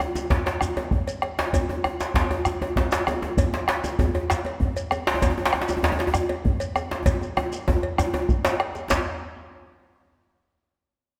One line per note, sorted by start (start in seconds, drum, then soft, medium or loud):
0.00 bombo rim loud
0.00 cowbell medium
0.00 djembe slap soft
0.00 djembe tone loud
0.00 shekere soft
0.15 djembe slap medium
0.15 djembe tone medium
0.15 shekere soft
0.30 bombo rim soft
0.30 bombo low loud
0.30 cowbell medium
0.30 djembe slap medium
0.30 djembe slap soft
0.30 djembe tone medium
0.30 djembe bass medium
0.46 bombo rim soft
0.46 cowbell medium
0.46 djembe slap medium
0.61 bombo rim loud
0.61 djembe slap soft
0.61 djembe tone medium
0.61 shekere medium
0.77 cowbell medium
0.77 djembe slap medium
0.77 djembe tone medium
0.91 bombo rim soft
0.91 bombo low loud
0.91 djembe slap soft
0.91 djembe bass medium
1.07 bombo rim soft
1.07 cowbell medium
1.07 djembe bass soft
1.07 shekere medium
1.22 bombo rim loud
1.22 cowbell medium
1.22 djembe slap medium
1.39 djembe slap loud
1.39 djembe slap medium
1.39 shekere soft
1.53 bombo low loud
1.53 cowbell medium
1.53 djembe tone medium
1.53 djembe bass medium
1.53 shekere medium
1.69 djembe tone medium
1.84 bombo rim loud
1.84 cowbell medium
1.84 djembe tone medium
2.00 djembe slap medium
2.00 shekere soft
2.14 bombo low medium
2.14 cowbell medium
2.14 djembe slap loud
2.14 djembe tone medium
2.14 djembe bass medium
2.14 shekere soft
2.30 bombo rim soft
2.30 cowbell medium
2.30 djembe tone medium
2.45 bombo rim loud
2.45 djembe slap soft
2.45 djembe tone medium
2.45 shekere medium
2.62 cowbell medium
2.62 djembe tone medium
2.76 bombo low loud
2.76 djembe slap medium
2.76 djembe bass medium
2.92 cowbell medium
2.92 djembe slap loud
2.92 shekere soft
3.07 bombo rim loud
3.07 cowbell medium
3.07 djembe tone medium
3.07 shekere soft
3.22 djembe slap medium
3.22 djembe tone medium
3.37 bombo low loud
3.37 cowbell medium
3.37 djembe tone medium
3.37 djembe bass medium
3.37 shekere medium
3.53 djembe slap medium
3.53 djembe tone medium
3.68 bombo rim loud
3.68 cowbell medium
3.68 djembe slap loud
3.84 djembe slap medium
3.84 djembe tone medium
3.84 shekere medium
3.99 bombo low loud
3.99 cowbell medium
3.99 djembe tone medium
3.99 djembe bass medium
3.99 shekere soft
4.15 bombo rim soft
4.15 cowbell medium
4.15 djembe tone medium
4.30 bombo rim loud
4.30 djembe slap soft
4.30 djembe slap medium
4.30 shekere medium
4.45 cowbell medium
4.45 djembe slap medium
4.45 djembe tone medium
4.60 bombo low loud
4.60 djembe bass medium
4.77 cowbell medium
4.77 shekere medium
4.91 bombo rim loud
4.91 cowbell medium
4.91 djembe tone medium
4.91 shekere soft
5.07 djembe slap loud
5.14 djembe tone medium
5.22 bombo low loud
5.22 cowbell medium
5.22 djembe slap medium
5.22 djembe bass medium
5.22 shekere medium
5.30 djembe tone medium
5.37 djembe tone medium
5.45 djembe slap loud
5.53 bombo rim loud
5.53 cowbell medium
5.53 djembe tone medium
5.61 djembe slap medium
5.68 djembe slap medium
5.68 djembe tone medium
5.68 shekere medium
5.77 djembe tone medium
5.83 djembe slap loud
5.83 djembe tone medium
5.83 djembe bass medium
5.83 shekere soft
5.92 djembe tone medium
5.99 bombo rim soft
5.99 cowbell medium
5.99 djembe slap medium
6.07 djembe tone medium
6.14 bombo rim loud
6.14 djembe slap soft
6.14 djembe tone medium
6.14 shekere medium
6.29 cowbell medium
6.29 djembe slap medium
6.29 djembe tone medium
6.45 bombo low loud
6.45 djembe bass medium
6.60 cowbell medium
6.60 shekere medium
6.76 bombo rim loud
6.76 cowbell medium
6.76 djembe tone medium
6.76 shekere soft
6.91 djembe slap medium
7.06 bombo low loud
7.06 cowbell medium
7.06 djembe tone loud
7.06 djembe bass medium
7.06 shekere medium
7.21 bombo rim soft
7.21 djembe tone medium
7.21 shekere soft
7.37 bombo rim loud
7.37 cowbell medium
7.37 djembe tone loud
7.52 djembe slap medium
7.52 shekere medium
7.68 bombo low loud
7.68 cowbell medium
7.68 djembe slap soft
7.68 djembe tone loud
7.68 djembe tone medium
7.68 djembe bass medium
7.83 cowbell medium
7.83 djembe slap soft
7.98 bombo rim loud
7.98 djembe tone loud
7.98 shekere medium
8.14 bombo rim soft
8.14 cowbell medium
8.14 djembe tone loud
8.14 djembe bass soft
8.29 bombo rim soft
8.29 bombo low loud
8.29 djembe bass medium
8.29 shekere soft
8.45 cowbell medium
8.45 djembe slap loud
8.45 djembe bass medium
8.45 shekere soft
8.60 bombo rim loud
8.60 cowbell medium
8.60 djembe slap medium
8.75 djembe slap medium
8.75 shekere soft
8.90 bombo low medium
8.90 cowbell medium
8.90 djembe slap loud
8.90 djembe bass medium
8.90 shekere medium